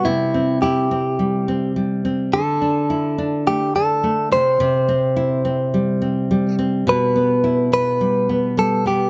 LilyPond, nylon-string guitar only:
\new Staff \with { instrumentName = "Nylon-string guitar" } { \time 4/4 \key c \lydian \tempo 4 = 106 c8 c'8 e'8 c'8 g8 c'8 g8 c'8 | d8 d'8 e'8 d'8 a8 d'8 a8 c8 | c8 c'8 e'8 c'8 g8 c'8 g8 c'8 | b,8 b8 e'8 b8 g8 b8 g8 b8 | }